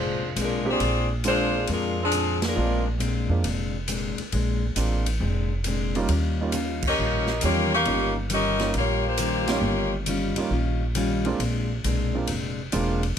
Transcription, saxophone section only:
0.00 0.33 G#3 medium
0.00 0.33 D4 medium
0.00 0.33 F4 medium
0.00 0.33 C5 medium
0.42 0.69 G#3 medium
0.42 0.69 D4 medium
0.42 0.69 F4 medium
0.42 0.69 A#4 medium
0.70 1.09 C4 medium
0.70 1.10 F4 medium
0.70 1.10 G#4 medium
0.70 1.09 D5 medium
1.26 1.67 G#3 medium
1.26 1.67 D4 medium
1.26 1.67 F4 medium
1.26 1.66 C5 loud
1.72 2.00 G#3 medium
1.72 2.00 D4 medium
1.72 2.00 F4 medium
1.72 2.00 A#4 medium
2.03 2.42 F3 medium
2.03 2.42 C4 medium
2.03 2.42 D4 medium
2.03 2.42 G#4 medium
2.48 2.89 G#3 medium
2.48 2.89 D4 medium
2.48 2.89 F4 medium
2.48 2.89 A#4 medium
6.88 7.40 C#4 medium
6.88 7.40 G4 medium
6.88 7.40 A#4 medium
6.88 7.40 D#5 medium
7.44 7.73 A#3 medium
7.44 7.73 F4 medium
7.44 7.73 G4 medium
7.44 7.73 C#5 medium
7.74 8.14 C#4 medium
7.74 8.15 G4 medium
7.74 8.14 A#4 medium
7.74 8.14 F5 medium
8.33 8.73 C#4 medium
8.33 8.73 G4 medium
8.33 8.73 A#4 medium
8.33 8.73 D#5 loud
8.78 9.06 A#3 medium
8.78 9.06 F4 medium
8.78 9.06 G4 medium
8.78 9.07 C#5 medium
9.07 9.50 A#3 medium
9.07 9.50 F4 medium
9.07 9.50 G4 medium
9.07 9.50 C5 medium
9.51 9.95 A#3 medium
9.51 9.94 F4 medium
9.51 9.95 G4 medium
9.51 9.94 C#5 medium

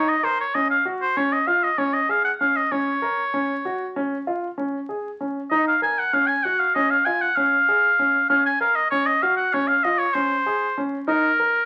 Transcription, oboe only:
0.00 0.10 C#5 medium
0.09 0.25 D#5 medium
0.24 0.39 C5 medium
0.40 0.56 C#5 medium
0.55 0.70 D#5 medium
0.70 0.85 F5 medium
1.02 1.19 C5 medium
1.17 1.34 C#5 medium
1.32 1.49 D#5 medium
1.47 1.65 F5 medium
1.63 1.80 D#5 medium
1.78 1.95 C#5 medium
1.94 2.12 D#5 medium
2.10 2.24 F5 medium
2.25 2.32 F#5 medium
2.40 2.57 F5 medium
2.56 2.73 D#5 medium
2.72 3.96 C#5 medium
5.51 5.65 D#5 medium
5.68 5.81 F5 medium
5.83 6.00 G#5 medium
5.99 6.15 F#5 medium
6.13 6.28 F5 medium
6.27 6.45 G#5 medium
6.43 6.61 F#5 medium
6.59 6.74 F5 medium
6.75 6.92 D#5 medium
6.90 7.07 F5 medium
7.05 7.23 G#5 medium
7.21 7.37 F#5 medium
7.36 8.28 F5 medium
8.29 8.44 F5 medium
8.46 8.60 G#5 medium
8.61 8.77 F5 medium
8.75 8.90 D#5 medium
8.91 9.07 C#5 medium
9.06 9.24 D#5 medium
9.22 9.36 F5 medium
9.37 9.54 F#5 medium
9.53 9.69 C#5 medium
9.68 9.85 F5 medium
9.83 10.00 D#5 medium
9.98 10.15 C#5 medium
10.14 10.84 C5 medium
11.08 11.65 A#4 medium

